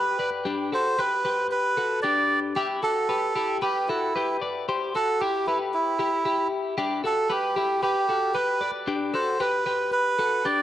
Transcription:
Already playing: clean electric guitar G4 B4, melodica B4
0.19 clean electric guitar B4 D5
0.45 clean electric guitar D4 G4
0.72 clean electric guitar F#4 A4, melodica C5
0.99 clean electric guitar G4 B4, melodica B4
1.25 clean electric guitar G4 B4
1.51 melodica B4
1.77 clean electric guitar F#4 A4
2.02 clean electric guitar D4 G4, melodica D5
2.56 clean electric guitar E4 G4, melodica G4
2.83 clean electric guitar F#4 A4, melodica A4
3.09 clean electric guitar G4 B4
3.36 clean electric guitar E4 G4
3.62 melodica G4, clean electric guitar G4 B4
3.88 melodica E4, clean electric guitar F#4 A4
4.16 clean electric guitar G4 B4
4.42 clean electric guitar B4 D5
4.69 clean electric guitar G4 C5
4.95 clean electric guitar F#4 A4, melodica A4
5.20 clean electric guitar E4 G4, melodica G4
5.47 melodica E4, clean electric guitar G4 B4
5.74 melodica E4
5.99 clean electric guitar E4 G4
6.25 clean electric guitar E4 G4
6.78 clean electric guitar D4 G4
7.04 clean electric guitar F#4 A4, melodica A4
7.30 clean electric guitar G4 B4, melodica G4
7.56 clean electric guitar E4 G4
7.83 melodica G4, clean electric guitar G4 B4
8.09 clean electric guitar F#4 A4
8.34 clean electric guitar G4 B4, melodica B4
8.61 clean electric guitar B4 D5
8.88 clean electric guitar D4 G4
9.14 clean electric guitar F#4 A4, melodica C5
9.40 clean electric guitar G4 B4, melodica B4
9.66 clean electric guitar G4 B4
9.92 melodica B4
10.19 clean electric guitar F#4 A4
10.45 clean electric guitar D4 G4, melodica D5

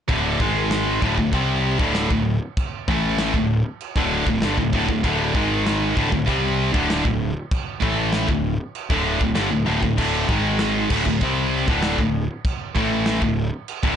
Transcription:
0.09 picked electric bass D1, distorted electric guitar D2 A2 D3, kick, china
0.40 picked electric bass G#1, distorted electric guitar G#2 D#3 G#3, kick
0.71 snare, china
1.02 picked electric bass D1, distorted electric guitar D2 A2, kick
1.17 picked electric bass D1, distorted electric guitar D2 A2, kick
1.32 picked electric bass C2, distorted electric guitar C3 G3 C4, kick, china
1.79 picked electric bass D1, distorted electric guitar D2 A2 D3, kick
1.95 snare, china
2.10 picked electric bass D1, distorted electric guitar D2 A2, kick
2.57 kick, china
2.88 picked electric bass A1, distorted electric guitar A2 E3 A3, kick
3.18 snare, china
3.34 picked electric bass D1, distorted electric guitar D2 A2, kick
3.81 china
3.96 picked electric bass D1, distorted electric guitar D2 A2 D3, kick
4.26 picked electric bass D1, distorted electric guitar D2 A2, kick
4.42 picked electric bass G1, distorted electric guitar G2 D3, snare, china
4.57 picked electric bass D1, distorted electric guitar D2 A2, kick
4.73 picked electric bass D1, distorted electric guitar D2 A2, kick
4.88 picked electric bass D1, distorted electric guitar D2 A2, kick
5.04 picked electric bass D1, distorted electric guitar D2 A2 D3, kick, china
5.35 picked electric bass G#1, distorted electric guitar G#2 D#3 G#3, kick
5.66 snare, china
5.96 picked electric bass D1, distorted electric guitar D2 A2, kick
6.12 picked electric bass D1, distorted electric guitar D2 A2, kick
6.27 picked electric bass C2, distorted electric guitar C3 G3 C4, kick, china
6.73 picked electric bass D1, distorted electric guitar D2 A2 D3, kick
6.90 snare, china
7.04 picked electric bass D1, distorted electric guitar D2 A2, kick
7.51 kick, china
7.82 picked electric bass A1, distorted electric guitar A2 E3 A3, kick
8.13 snare, china
8.28 picked electric bass D1, distorted electric guitar D2 A2, kick
8.75 china
8.90 picked electric bass D1, distorted electric guitar D2 A2 D3, kick
9.20 picked electric bass D1, distorted electric guitar D2 A2, kick
9.35 picked electric bass G1, distorted electric guitar G2 D3, snare, china
9.51 picked electric bass D1, distorted electric guitar D2 A2
9.66 picked electric bass D1, distorted electric guitar D2 A2, high tom
9.82 picked electric bass D1, distorted electric guitar D2 A2, kick
9.97 picked electric bass D1, distorted electric guitar D2 A2 D3, kick, china, crash
10.29 picked electric bass G#1, distorted electric guitar G#2 D#3 G#3, kick
10.59 snare, china
10.90 picked electric bass D1, distorted electric guitar D2 A2, kick, crash
11.06 picked electric bass D1, distorted electric guitar D2 A2, kick
11.21 picked electric bass C2, distorted electric guitar C3 G3 C4, kick, china
11.68 picked electric bass D1, distorted electric guitar D2 A2 D3, kick
11.82 snare, china
11.98 picked electric bass D1, distorted electric guitar D2 A2, kick
12.45 kick, china
12.75 picked electric bass A1, distorted electric guitar A2 E3 A3, kick
13.06 snare, china
13.21 picked electric bass D1, distorted electric guitar D2 A2, kick
13.68 china
13.83 picked electric bass D1, distorted electric guitar D2 A2 D3, kick

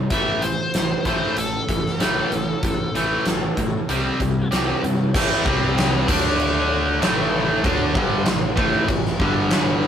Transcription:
0.10 fingered electric bass A1, distorted electric guitar A2 E3 A3, lead electric guitar E5, kick, closed hi-hat
0.42 distorted electric guitar A2 E3, lead electric guitar C5, closed hi-hat
0.74 fingered electric bass A1, distorted electric guitar A2 E3, snare, closed hi-hat
1.05 fingered electric bass A1, distorted electric guitar A2 E3 A3, lead electric guitar C5, kick, closed hi-hat
1.37 fingered electric bass A1, distorted electric guitar A2 E3, lead electric guitar A4, closed hi-hat
1.69 fingered electric bass A1, distorted electric guitar A2 E3, kick, closed hi-hat
1.87 snare
2.00 fingered electric bass A1, distorted electric guitar A2 E3 A3, snare, closed hi-hat
2.31 fingered electric bass A1, distorted electric guitar A2 E3, closed hi-hat
2.63 fingered electric bass A1, distorted electric guitar A2 E3, kick, closed hi-hat
2.94 fingered electric bass A1, distorted electric guitar A2 E3 A3, closed hi-hat
3.26 fingered electric bass A1, distorted electric guitar A2 E3, snare, closed hi-hat
3.57 fingered electric bass A2, distorted electric guitar A2 E3, kick, closed hi-hat
3.88 fingered electric bass C2, distorted electric guitar C3 G3 C4, closed hi-hat
4.20 fingered electric bass C2, distorted electric guitar C3 G3, kick, closed hi-hat
4.51 fingered electric bass C2, distorted electric guitar C3 G3 C4, snare, closed hi-hat
4.83 fingered electric bass G2, distorted electric guitar C3 G3, closed hi-hat
5.14 fingered electric bass A1, distorted electric guitar A2 E3 A3, kick, crash
5.45 fingered electric bass C2, distorted electric guitar C3 G3 C4, kick
5.78 snare, crash
6.08 fingered electric bass D2, distorted electric guitar D3 A3 D4, kick, crash
6.40 crash
7.01 fingered electric bass A1, distorted electric guitar A2 E3 A3, snare, crash
7.64 fingered electric bass D2, distorted electric guitar D3 A3 D4, kick, crash
7.95 fingered electric bass G1, distorted electric guitar G2 D3 G3, kick
8.26 fingered electric bass A1, distorted electric guitar A2 E3, snare, crash
8.56 fingered electric bass A1, distorted electric guitar A2 E3 A3, kick
8.88 fingered electric bass A1, distorted electric guitar A2 E3, kick, crash
9.06 snare
9.20 fingered electric bass G1, distorted electric guitar G2 D3 G3, kick
9.50 snare, crash

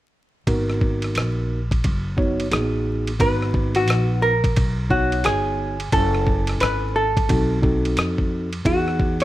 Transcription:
0.47 upright bass G#1, tine electric piano B3 D#4 F#4 A#4, kick, ride
0.70 cross-stick
0.81 kick
1.02 cross-stick, ride
1.15 upright bass A#1, cross-stick, hi-hat pedal, ride
1.71 kick, ride
1.84 upright bass F#1, kick, ride
2.17 tine electric piano B3 D#4 F#4 C#5, kick
2.40 ride
2.51 upright bass A1, tine electric piano A#3 D#4 F#4 G#4, cross-stick, hi-hat pedal, ride
2.58 tine electric piano B3
3.07 ride
3.19 upright bass G#1, tine electric piano B3 D#4 F#4 B4, hollow-body jazz guitar B4, kick, ride
3.42 cross-stick
3.54 kick
3.75 hollow-body jazz guitar F#4, cross-stick, ride
3.88 upright bass A#1, cross-stick, hi-hat pedal, ride
4.22 hollow-body jazz guitar A#4
4.44 kick, ride
4.56 upright bass B1, kick, ride
4.90 tine electric piano B3 D#4 F#4 C#5, hollow-body jazz guitar F#4, kick
5.12 ride
5.24 upright bass G1, hollow-body jazz guitar G#4, cross-stick, hi-hat pedal, ride
5.80 ride
5.92 upright bass F#1, tine electric piano C#4 E4 A4 G#5, hollow-body jazz guitar A4, kick, ride
6.15 cross-stick
6.27 kick
6.47 cross-stick, ride
6.60 upright bass G#1, hollow-body jazz guitar B4, cross-stick, hi-hat pedal, ride
6.96 hollow-body jazz guitar A4
7.17 kick, ride
7.29 upright bass B1, tine electric piano C4 D#4 F#4 A4, kick, ride
7.62 tine electric piano C4 D#4 F#4 A4, kick
7.85 ride
7.97 upright bass F2, cross-stick, hi-hat pedal, ride
8.18 kick
8.53 ride
8.65 upright bass E2, tine electric piano B3 D#4 F#4 G#4, hollow-body jazz guitar F#4, kick, ride
8.88 cross-stick
9.00 kick
9.20 ride

